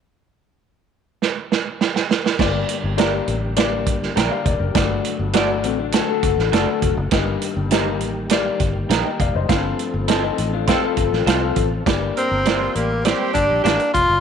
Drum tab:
CC |----------------|x---------------|----------------|----------------|
HH |----------------|--x-x-x-x-x-x-x-|x-x-x-x-x-x-x-x-|x-x-x-x-x-x-x-x-|
SD |--------o-o-oooo|o---o---o--oo---|o---o---o--oo---|o---o---o---o---|
BD |----------------|o---------o---o-|o---------o---o-|o---------o---o-|

CC |----------------|----------------|
HH |x-x-x-x-x-x-x-x-|x-x-x-x-x-x-xxx-|
SD |o---o---o--oo---|o---o---o---o---|
BD |o-------o-o---o-|o---------o---o-|